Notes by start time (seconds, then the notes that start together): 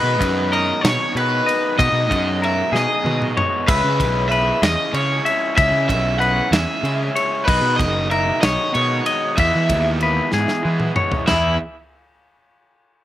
Already playing: B2 D#3 G#3 B3 D#4 B4 D#5
0.03 B2
0.21 F#2, kick, ride
0.52 A#4 D#5, ride
0.81 B2 C#5, snare, ride
0.86 C#5
1.15 B2 D#3 G#3 B3 D#4 B4, ride
1.46 D#5, ride
1.77 B2 D#3 G#3 B3 D#4 D#5, kick, ride
1.92 B2
2.11 F#2, kick, ride
2.42 A#4 E5, ride
2.72 B2 G#4, snare
2.76 D#5
3.03 B2 D#3 G#3 B3 D#4, high tom
3.22 mid tom
3.37 C#5, mid tom
3.67 C#2 C#3 G#3 C#4 E4 B4 E5, kick, crash, ride
3.84 C#3
4.00 B1, kick, ride
4.29 B4 E5, ride
4.62 E2 D#5, snare, ride
4.93 C#3 G#3 C#4 E4 C#5, ride
5.25 E5, ride
5.56 C#2 C#3 G#3 C#4 E4 E5, kick, ride
5.71 C#3
5.89 B1 E5, kick, ride
6.19 B4 F#5, ride
6.51 E2 G#4 E5, snare, ride
6.83 C#3 G#3 C#4, ride
6.87 E4
7.16 C#5, ride
7.45 B1 B2 D#3 G#3 B3 B4 D#5, kick, crash
7.50 D#4
7.62 B2
7.76 F#1 D#5, kick
7.80 ride
8.10 A#4 E5, ride
8.41 B1 C#5 D#5, snare, ride
8.73 B2 D#3 G#3 B3 D#4 C#5, ride
9.06 D#5, ride
9.37 E2 E3 G#3 B3 E4 E5, kick, ride
9.55 E3
9.69 D#2, kick, ride
10.01 B4, ride
10.32 G#2 G#4, snare
10.48 snare
10.63 E3 G#3 B3 E4
10.80 mid tom
10.96 C#5, mid tom
11.12 floor tom
11.27 E2 E3 B3 E4 G#4 E5, snare, floor tom, china